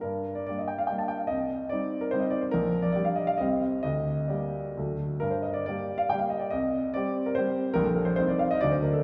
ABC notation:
X:1
M:3/4
L:1/16
Q:1/4=139
K:Gm
V:1 name="Grand piano"
B3 d d e g f g a g f | e4 d3 B c e d c | B3 d d f e f e4 | e4 d4 z4 |
B c e d d3 f g f e d | e4 d3 B c4 | B A B c c d f e d c B A |]
V:2 name="Grand piano"
G,,4 [G,B,D]4 [G,B,D]4 | C,,4 [G,CE]4 [G,CE]4 | B,,,4 [G,DG]4 [C,,G,CG]4 | D,,4 [G,B,G]4 [D,,^F,A,A]4 |
G,,4 [G,B,G]4 [G,B,G]4 | C,,4 [G,CG]4 [G,CG]4 | [B,,,G,DG]4 [C,,G,CE]4 [D,,^F,A,D]4 |]